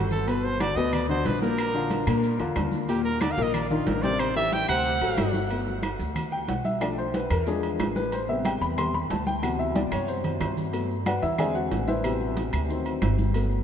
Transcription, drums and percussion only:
0.00 low conga
0.11 low conga, maracas
0.28 high conga, low agogo, maracas
0.44 high conga, maracas
0.60 high conga, low timbale, low agogo, claves, maracas
0.76 maracas
0.93 high conga, low conga, low agogo, claves, maracas
1.09 high conga, low conga, maracas
1.25 high conga, low timbale, low agogo, maracas
1.42 high conga, maracas
1.58 high conga, low agogo, claves, maracas
1.75 high conga, maracas
1.91 high conga, low timbale, low agogo, maracas
2.07 high conga, low agogo, claves, maracas
2.23 high conga, maracas
2.40 low agogo, maracas
2.56 high conga, low timbale, low agogo, claves, maracas
2.72 high conga, maracas
2.88 high conga, low agogo, maracas
3.05 high conga, maracas
3.21 high conga, low timbale, low agogo, claves, maracas
3.38 maracas
3.54 high conga, low conga, low agogo, claves, maracas
3.70 high conga, low conga, maracas
3.87 high conga, low timbale, low agogo, maracas
4.03 high conga, maracas
4.19 high conga, low agogo, claves, maracas
4.36 high conga, maracas
4.52 high conga, low timbale, low agogo, maracas
4.68 high conga, low agogo, claves, maracas
4.85 high conga, maracas
5.01 high conga, low agogo, maracas
5.17 high conga, low timbale, low agogo, claves, maracas
5.34 high conga, maracas
5.50 high conga, low agogo, maracas
5.67 high conga, maracas
5.83 high conga, low timbale, low agogo, claves, maracas
6.00 maracas
6.16 high conga, low conga, low agogo, claves, maracas
6.32 high conga, maracas
6.48 high conga, low timbale, low agogo, maracas
6.64 high conga, maracas
6.81 high conga, low agogo, claves, maracas
6.97 high conga, maracas
7.14 high conga, low timbale, low agogo, maracas
7.30 high conga, low agogo, claves, maracas
7.47 high conga, maracas
7.63 high conga, low agogo, maracas
7.79 high conga, low timbale, low agogo, claves, maracas
7.96 high conga, maracas
8.12 high conga, low agogo, maracas
8.29 high conga, maracas
8.45 high conga, low timbale, low agogo, claves, maracas
8.61 maracas
8.78 high conga, low conga, low agogo, claves, maracas
8.94 high conga, low conga, maracas
9.10 high conga, low timbale, low agogo, maracas
9.27 high conga, maracas
9.43 high conga, low agogo, claves, maracas
9.59 high conga, maracas
9.75 high conga, low timbale, low agogo, maracas
9.92 high conga, low agogo, claves, maracas
10.08 maracas
10.24 low conga, low agogo, maracas
10.40 low conga, low timbale, low agogo, claves, maracas
10.57 low conga, maracas
10.73 high conga, low agogo, maracas
10.90 high conga, maracas
11.06 high conga, low timbale, low agogo, claves, maracas
11.23 maracas
11.38 high conga, low conga, low agogo, claves, maracas
11.55 high conga, maracas
11.71 high conga, low timbale, low agogo, maracas
11.88 high conga, maracas
12.04 high conga, low agogo, claves, maracas
12.20 high conga, maracas
12.37 high conga, low timbale, low agogo, maracas
12.53 high conga, low agogo, claves, maracas
12.70 high conga, maracas
12.86 high conga, low agogo, maracas
13.02 high conga, low timbale, low agogo, claves, maracas
13.18 high conga, maracas
13.34 low agogo, maracas
13.51 high conga, maracas

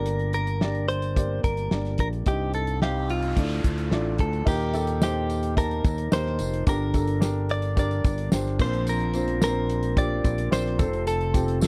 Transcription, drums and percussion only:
0.06 closed hi-hat
0.19 closed hi-hat
0.33 closed hi-hat
0.47 closed hi-hat
0.61 snare
0.75 closed hi-hat
0.89 closed hi-hat
1.02 closed hi-hat
1.16 kick, closed hi-hat
1.44 kick, closed hi-hat
1.57 closed hi-hat
1.71 snare
1.85 snare, closed hi-hat
1.98 kick, closed hi-hat
2.13 closed hi-hat
2.26 kick, closed hi-hat
2.54 closed hi-hat
2.67 closed hi-hat
2.82 snare
3.10 closed hi-hat
3.22 closed hi-hat
3.37 kick, closed hi-hat
3.64 kick, closed hi-hat
3.78 closed hi-hat
3.91 snare
4.18 kick, closed hi-hat
4.33 closed hi-hat
4.47 kick, crash, tambourine
4.60 closed hi-hat
4.74 closed hi-hat, tambourine
4.87 closed hi-hat
5.02 snare, tambourine
5.30 closed hi-hat, tambourine
5.43 closed hi-hat
5.57 kick, closed hi-hat, tambourine
5.71 closed hi-hat
5.84 kick, closed hi-hat, tambourine
5.98 closed hi-hat
6.12 snare, tambourine
6.26 snare
6.39 closed hi-hat, tambourine
6.54 closed hi-hat
6.67 kick, closed hi-hat, tambourine
6.94 kick, closed hi-hat, tambourine
7.07 closed hi-hat
7.22 snare, tambourine
7.49 closed hi-hat
7.62 closed hi-hat
7.77 kick, closed hi-hat, tambourine
7.91 closed hi-hat
8.04 kick, closed hi-hat, tambourine
8.18 closed hi-hat
8.32 snare, tambourine
8.46 snare
8.59 kick, tambourine, crash
8.73 closed hi-hat
8.87 closed hi-hat, tambourine
9.00 closed hi-hat
9.14 closed hi-hat, tambourine
9.28 closed hi-hat
9.42 snare, tambourine
9.70 closed hi-hat
9.83 closed hi-hat
9.97 kick, closed hi-hat, tambourine
10.24 kick, closed hi-hat, tambourine
10.38 closed hi-hat
10.52 snare, tambourine
10.66 snare, closed hi-hat
10.79 kick, closed hi-hat, tambourine
10.93 closed hi-hat
11.07 closed hi-hat, tambourine
11.21 closed hi-hat
11.34 kick, closed hi-hat, tambourine
11.48 closed hi-hat
11.62 snare, tambourine

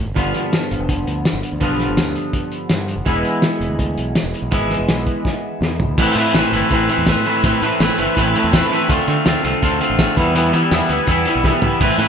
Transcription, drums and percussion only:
0.16 kick, closed hi-hat
0.34 snare, closed hi-hat
0.53 snare, closed hi-hat, tambourine
0.71 closed hi-hat
0.89 kick, closed hi-hat
1.07 closed hi-hat
1.25 snare, closed hi-hat, tambourine
1.43 closed hi-hat
1.61 kick, closed hi-hat
1.80 snare, closed hi-hat
1.97 snare, closed hi-hat, tambourine
2.15 closed hi-hat
2.33 kick, closed hi-hat
2.52 closed hi-hat
2.70 snare, closed hi-hat, tambourine
2.88 closed hi-hat
3.06 kick, closed hi-hat
3.25 closed hi-hat
3.42 snare, closed hi-hat, tambourine
3.61 closed hi-hat
3.79 kick, closed hi-hat
3.98 closed hi-hat
4.15 snare, closed hi-hat, tambourine
4.34 closed hi-hat
4.52 kick, closed hi-hat
4.71 snare, closed hi-hat
4.89 snare, closed hi-hat, tambourine
5.07 kick, closed hi-hat
5.25 kick, snare
5.62 snare
5.80 floor tom
5.98 kick, crash
6.16 closed hi-hat
6.34 snare, closed hi-hat, tambourine
6.53 closed hi-hat
6.71 kick, closed hi-hat
6.89 closed hi-hat
7.07 kick, snare, closed hi-hat, tambourine
7.26 closed hi-hat
7.44 kick, closed hi-hat
7.62 closed hi-hat
7.80 snare, closed hi-hat, tambourine
7.98 closed hi-hat
8.17 kick, closed hi-hat
8.35 closed hi-hat
8.53 kick, snare, closed hi-hat, tambourine
8.72 closed hi-hat
8.90 kick, closed hi-hat
9.08 closed hi-hat
9.26 snare, closed hi-hat, tambourine
9.44 closed hi-hat
9.63 kick, closed hi-hat
9.81 closed hi-hat
9.99 kick, snare, closed hi-hat, tambourine
10.17 kick, closed hi-hat
10.36 closed hi-hat
10.53 closed hi-hat
10.71 snare, closed hi-hat, tambourine
10.89 closed hi-hat
11.07 kick, closed hi-hat
11.25 closed hi-hat
11.44 kick, snare
11.62 floor tom
11.81 kick, crash
11.99 closed hi-hat

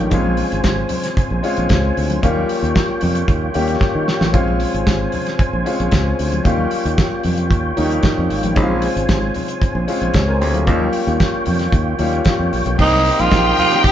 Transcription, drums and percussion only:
0.11 kick, closed hi-hat, low conga
0.24 muted conga, high conga
0.37 open hi-hat
0.52 closed hi-hat
0.64 kick, snare, closed hi-hat
0.77 muted conga
0.89 open hi-hat, high conga, low conga
1.04 snare, closed hi-hat
1.17 kick, closed hi-hat
1.30 muted conga
1.44 open hi-hat
1.57 closed hi-hat
1.69 kick, snare, closed hi-hat
1.84 muted conga
1.97 open hi-hat
2.10 closed hi-hat, high conga
2.23 kick, closed hi-hat, muted conga, low conga
2.36 muted conga, high conga
2.49 open hi-hat
2.64 closed hi-hat
2.75 kick, snare, closed hi-hat
2.89 muted conga
3.01 open hi-hat, high conga, low conga
3.15 closed hi-hat
3.28 kick, closed hi-hat
3.41 muted conga
3.54 open hi-hat
3.68 closed hi-hat
3.81 kick, snare, muted conga
4.08 snare
4.21 snare, high conga
4.34 kick, closed hi-hat, low conga
4.47 muted conga, high conga
4.60 open hi-hat
4.74 closed hi-hat
4.87 kick, snare, closed hi-hat
5.12 open hi-hat, high conga, low conga
5.26 snare, closed hi-hat
5.39 kick, closed hi-hat, muted conga
5.53 muted conga
5.66 open hi-hat
5.80 closed hi-hat
5.91 kick, snare, closed hi-hat
6.19 open hi-hat
6.32 closed hi-hat, high conga
6.45 kick, closed hi-hat, muted conga, low conga
6.58 muted conga, high conga
6.71 open hi-hat
6.86 closed hi-hat
6.98 kick, snare, closed hi-hat
7.12 muted conga
7.23 open hi-hat, high conga, low conga
7.37 closed hi-hat
7.51 kick, closed hi-hat, muted conga
7.77 open hi-hat
7.91 closed hi-hat
8.03 kick, snare, closed hi-hat, muted conga
8.30 open hi-hat
8.43 closed hi-hat, high conga
8.56 kick, closed hi-hat, muted conga, low conga
8.69 high conga
8.82 open hi-hat
8.97 closed hi-hat
9.09 kick, snare, closed hi-hat, muted conga
9.22 muted conga
9.34 open hi-hat, high conga, low conga
9.48 closed hi-hat
9.62 kick, closed hi-hat, muted conga
9.75 muted conga
9.88 open hi-hat
10.01 closed hi-hat
10.14 kick, snare, closed hi-hat, muted conga
10.28 muted conga
10.42 open hi-hat
10.54 closed hi-hat, high conga
10.67 kick, closed hi-hat, low conga
10.80 muted conga, high conga
10.93 open hi-hat
11.08 closed hi-hat
11.20 kick, snare, closed hi-hat
11.34 muted conga
11.46 open hi-hat, high conga, low conga
11.59 snare, closed hi-hat
11.72 kick, closed hi-hat, muted conga
11.99 open hi-hat, high conga
12.13 closed hi-hat
12.25 kick, snare, closed hi-hat
12.40 muted conga
12.53 open hi-hat
12.66 closed hi-hat, high conga
12.79 kick, crash, low conga
12.92 high conga
13.05 open hi-hat
13.19 closed hi-hat
13.31 kick, snare, closed hi-hat
13.46 muted conga
13.57 open hi-hat, high conga, low conga
13.71 snare, closed hi-hat
13.84 kick, closed hi-hat, muted conga

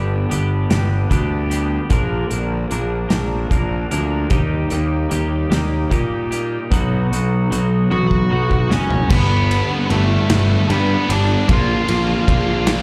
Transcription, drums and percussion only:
0.31 closed hi-hat
0.70 snare, closed hi-hat
1.11 kick, closed hi-hat
1.51 closed hi-hat
1.90 kick, closed hi-hat
2.31 closed hi-hat
2.71 closed hi-hat
3.10 snare, closed hi-hat
3.51 kick, closed hi-hat
3.91 closed hi-hat
4.30 kick, closed hi-hat
4.70 closed hi-hat
5.11 closed hi-hat
5.52 snare, closed hi-hat
5.91 kick, closed hi-hat
6.32 closed hi-hat
6.72 kick, closed hi-hat
7.13 closed hi-hat
7.52 closed hi-hat
7.92 high tom
8.11 kick
8.51 kick
8.71 snare
8.90 floor tom
9.10 kick, crash
9.51 ride
9.90 ride
10.30 snare, ride
10.70 ride
11.10 ride
11.49 kick, ride
11.88 ride
12.28 kick, ride
12.67 snare, ride

